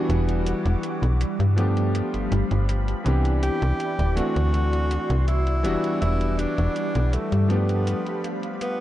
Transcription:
Already playing: E3 G3 B3 D4 F#4 F#5 D6
0.09 E1, closed hi-hat
0.29 closed hi-hat
0.46 closed hi-hat
0.65 E1, closed hi-hat
0.83 closed hi-hat
1.02 B1, closed hi-hat
1.21 closed hi-hat
1.40 G2, closed hi-hat
1.56 F3 A3 B3 D4 G4 F5 B5, closed hi-hat
1.77 closed hi-hat
1.95 closed hi-hat
2.14 G1, closed hi-hat
2.32 G1, closed hi-hat
2.51 G1, closed hi-hat
2.69 closed hi-hat
2.88 closed hi-hat
3.04 C2 E3 B3 C4 D4 E4 G4 D5, closed hi-hat
3.25 closed hi-hat
3.43 G4, closed hi-hat
3.62 C2, closed hi-hat
3.80 closed hi-hat
3.99 D1, closed hi-hat
4.15 E3 A3 C4 D4 F#4 C6, closed hi-hat
4.36 D2, closed hi-hat
4.54 closed hi-hat
4.73 closed hi-hat
4.91 closed hi-hat
5.10 C2, closed hi-hat
5.28 E4, closed hi-hat
5.47 closed hi-hat
5.63 E1 E3 G3 B3 D4 F#4 F#5 D6, closed hi-hat
5.84 closed hi-hat
6.01 E1 E4, closed hi-hat
6.21 closed hi-hat
6.39 D4, closed hi-hat
6.58 E1, closed hi-hat
6.76 closed hi-hat
6.95 B1, closed hi-hat
7.13 A3, closed hi-hat
7.32 G2, closed hi-hat
7.48 F3 A3 B3 D4 G4 F5 B5, closed hi-hat
7.69 closed hi-hat
7.87 closed hi-hat
8.06 closed hi-hat
8.24 closed hi-hat
8.43 closed hi-hat
8.61 B3, closed hi-hat

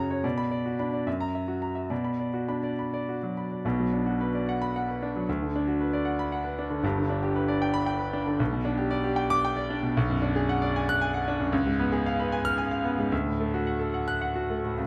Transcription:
Already playing: F#2 C#3 C#4 F#4 C#5 A#5
0.11 C#5
0.24 B2 D5
0.38 B5
0.51 D5
0.66 F#4
0.79 D4 B5
0.93 D5
1.07 F#2 E5
1.21 A#5
1.35 E5
1.48 F#4
1.62 A#5
1.75 E5
1.90 B2 D5
2.04 B5
2.20 D5
2.34 F#4
2.48 D4 B5
2.63 D5
2.79 B5
2.94 D5
3.09 F#4
3.23 F#3
3.37 B5
3.51 D5
3.65 B1 B2
3.79 F#3
3.93 D4
4.06 F#4
4.21 B4
4.35 D5
4.49 F#5
4.62 B5
4.76 F#5
4.88 B4
5.03 D4
5.16 F#3
5.29 D2
5.42 D3
5.56 D4
5.68 F#4
5.81 B4
5.93 D5
6.05 F#5
6.19 B5
6.32 F#5
6.44 B4
6.59 D4
6.70 D3
6.83 G1 G2
6.98 D3
7.10 D4
7.23 G4
7.36 B4
7.48 D5
7.62 G5
7.74 B5
7.86 G5
7.99 B4
8.13 D4
8.27 D3
8.40 B1
8.53 B2
8.65 D4
8.78 G4
8.91 D5
9.04 G4
9.16 G5
9.30 D6
9.45 G5
9.57 D5
9.70 D4
9.83 B2
9.97 B1
10.10 F#2
10.22 D4
10.36 G#4
10.49 F#5
10.62 D5
10.76 G#5
10.89 F#6
11.01 G#5
11.14 F#5
11.28 D4
11.40 F#2
11.52 C#2
11.66 G#2
11.79 B3
11.92 G#4
12.06 F5
12.20 B4
12.32 G#5
12.45 F6
12.58 G#5
12.71 F5
12.84 B3
12.98 G#2
13.12 D2
13.26 A2
13.40 A3
13.54 F#4
13.67 F#5
13.79 A4
13.94 F#5
14.08 F#6
14.21 F#5
14.36 F#4
14.50 A3
14.64 A2
14.78 C#2

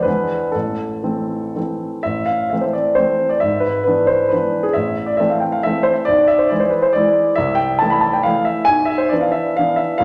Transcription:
0.03 E2 E3 G#3 D4 B4
0.52 A1 A4
1.03 E3 A3 C4
1.56 E3 A3 C4
2.03 A1 E5
2.26 F5
2.50 E3 A3 C4 E5
2.61 C5
2.73 D5
2.95 E3 A3 C4 C5
3.29 D5
3.40 G#1 E5
3.60 B4
3.84 E3 B3 D4 B4
4.07 C5
4.29 E3 B3 D4 B4
4.63 G#4
4.73 A1 E5
5.06 D5
5.17 E3 A3 C4 E5
5.30 F5
5.40 G5
5.52 F5
5.63 E3 A3 C4 E5
5.83 C5
5.93 E5
6.05 B1 D5
6.28 E5
6.38 C5
6.49 E3 G#3 E4 D5
6.60 C5
6.70 B4
6.82 C5
6.93 E3 G#3 E4 D5
7.35 C2 E5
7.55 G5
7.79 E3 A3 E4 A5
7.90 B5
8.01 A5
8.13 G5
8.23 E3 A3 E4 F5
8.45 E5
8.65 B1 G#5
8.85 E5
8.98 C5
9.09 E3 B3 D4 D5
9.21 F5
9.32 E5
9.57 E3 B3 D4 F5
9.76 E5
9.98 C2 E3 A3 F5

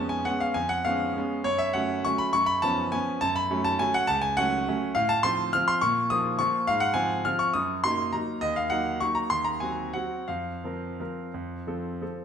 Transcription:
Already playing: F2 G#3 B3 C#4 A5
0.09 G#5
0.25 G#3 B3 C#4 F#5
0.40 F5
0.54 F2 G#5
0.69 F#5
0.85 G#3 B3 C#4 F5
1.17 G#3 B3 C#4
1.44 F#2 C#5
1.58 E5
1.73 F#3 A3 C#4 F#5
2.05 F#3 A3 C#4 C#6
2.18 B5
2.33 F#2 C#6
2.46 B5
2.62 F3 B3 C#4 A5
2.92 F3 B3 C#4 G#5
3.21 F#2 A5
3.36 B5
3.51 F#3 A3 C#4
3.64 A5
3.79 F#3 A3 C#4 G#5
3.94 F#5
4.07 C#2 A5
4.21 G#5
4.37 F#3 A3 C#4 F#5
4.68 F#3 A3 C#4
4.95 A2 F5
5.09 A5
5.23 F3 C4 F4 C6
5.53 F3 C4 F4 F6
5.68 C6
5.81 A#2 C#6
6.10 F3 A#3 F4 D#6
6.39 F3 A#3 F4 C#6
6.67 G#2 F5
6.80 F#5
6.94 F3 C4 F4 G#5
7.25 F3 C4 F4 F6
7.39 C#6
7.54 F#2 D#6
7.84 F#3 A#3 D#4 C6
8.13 F#3 A#3 D#4 A#5
8.41 D#2 D#5
8.56 F5
8.70 F#3 A#3 D#4 F#5
9.01 F#3 A#3 D#4 C#6
9.15 A#5
9.30 D#2 C6
9.45 A#5
9.60 F#3 C4 F#4 G#5
9.93 F#3 C4 F#4 F#5
10.28 F2 F5
10.64 F3 C4 A#4
11.00 F3 C4 A#4
11.34 F2
11.67 F3 C4 A4
12.02 F3 C4 A4

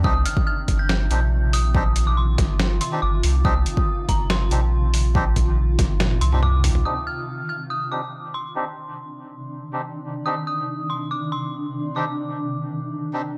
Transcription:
Already playing: C3 D#3
0.04 C2 C4 D4 D#4 F4 G4 D#6, kick
0.26 F6, closed hi-hat
0.37 kick
0.47 F6
0.68 G1, kick, closed hi-hat
0.79 G6
0.89 snare, closed hi-hat
1.11 A#1 C4 D4 D#4 G4, closed hi-hat
1.53 D#6, open hi-hat
1.74 C4 D4 D#4 G4, kick
1.96 closed hi-hat
2.07 D6
2.17 C6
2.38 G1, kick, snare, closed hi-hat
2.60 snare, closed hi-hat
2.81 C6, closed hi-hat
2.92 C4 D4 D#4 G4
3.02 G1 D6
3.23 C2, open hi-hat
3.45 C2 C4 D4 D#4 G4 D#6, kick
3.66 closed hi-hat
3.77 kick
4.09 G1 A#5, kick, closed hi-hat
4.30 C6, snare, closed hi-hat
4.51 A#1 C4 D4 D#4 G4, closed hi-hat
4.94 open hi-hat
5.15 C4 D4 D#4 G4, kick
5.36 kick, closed hi-hat
5.79 G1, kick, snare, closed hi-hat
6.00 snare, closed hi-hat, high tom
6.11 high tom
6.21 C2 C6, closed hi-hat
6.32 C4 D4 D#4 G4, mid tom
6.43 D6, mid tom
6.64 A#1, mid tom, open hi-hat
6.75 mid tom
6.85 C3 D#3 C4 D4 D#4 G4 D#6
7.07 F6
7.49 F6
7.70 D#6
7.92 C4 D4 D#4 G4 D6
8.34 C6
8.55 C4 D4 D#4 G4
9.73 C4 D4 D#4 G4
10.26 C4 D4 D#4 G4 D#6
10.47 D#6
10.90 C6
11.11 D6
11.32 C6
11.96 C4 D4 D#4 G4 D6
13.13 C4 D4 D#4 G4

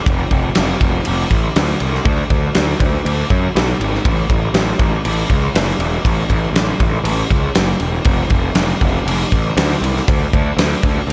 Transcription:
0.06 F1, kick, crash
0.31 F1, kick, crash
0.55 F1, snare, crash
0.81 F1, kick, crash
1.05 F1, crash
1.30 A1, kick, crash
1.56 D2, snare, crash
1.80 C2, crash
1.94 snare
2.05 D2, kick, crash
2.30 D2, kick, crash
2.54 D2, snare, crash
2.80 D2, kick, crash
3.05 D2, crash
3.30 F#2, kick, crash
3.55 B1, snare, crash
3.80 G#1, crash
3.95 snare
4.05 A1, kick, crash
4.29 A1, kick, crash
4.54 A1, snare, crash
4.79 A1, kick, crash
5.05 A1, crash
5.30 C#2, kick, crash
5.55 F#1, snare, crash
5.79 E1, crash
6.05 A1, kick, crash
6.30 A1, kick, crash
6.53 A1, snare, crash
6.80 A1, kick, crash
7.04 A1, crash
7.31 C#2, kick, crash
7.55 F#1, snare, crash
7.80 E1, crash
8.04 F1, kick, crash
8.30 F1, kick, crash
8.55 F1, snare, crash
8.81 F1, kick, crash
9.06 F1, crash
9.32 A1, kick, crash
9.57 D2, snare, crash
9.81 C2, crash
9.97 snare
10.08 D2, kick, crash
10.33 D2, kick, crash
10.57 D2, snare, crash
10.83 D2, kick, crash
11.07 D2

